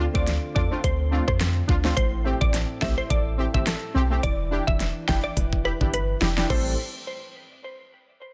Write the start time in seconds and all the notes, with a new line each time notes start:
Already playing: D3 A4
0.00 C4
0.14 D2 A3 C4 D4 F4 D5, kick
0.27 F4, snare, closed hi-hat
0.55 E2 D4 F4 A4 D5, kick
0.70 A3 C4 D4 F4
0.84 D2 C4 C5, kick, closed hi-hat
1.11 A3 C4 D4 F4
1.28 F2 C5, kick, cross-stick
1.41 C4, cross-stick, snare, closed hi-hat
1.68 D2 D4 F4, kick
1.83 A3 C4 D4 F4, snare
1.97 A1 A2 C5, kick, closed hi-hat
2.24 A3 C4 G4
2.41 A1 D5, kick
2.54 A4, snare, closed hi-hat
2.81 B1 A3 C4 E4 G4 E5, kick, cross-stick, snare
2.98 C5
3.10 A1 A4 D5, kick, closed hi-hat
3.38 C4 E4 G4
3.53 G1 A3 C4 G4 E5, kick
3.67 A4, cross-stick, snare, closed hi-hat
3.94 B1 C4 G4
4.10 A3 C4 G4
4.23 E1 E3 D5, kick, closed hi-hat
4.51 D4 E4 G4
4.67 E1 E5, kick
4.80 B4, snare, closed hi-hat
5.08 F1 D4 E4 G4 G5, kick, cross-stick, snare
5.24 D5
5.37 E1 B4, kick, closed hi-hat
5.53 kick
5.64 E4 G4 B4
5.80 G1 D4 E4 G4, kick
5.93 B4, closed hi-hat
6.21 E1 D4 E4 G4, snare
6.37 D4 E4 G4, snare
6.49 A1 A2 E3 G3 C4 E4 G4 A4 C5, kick, crash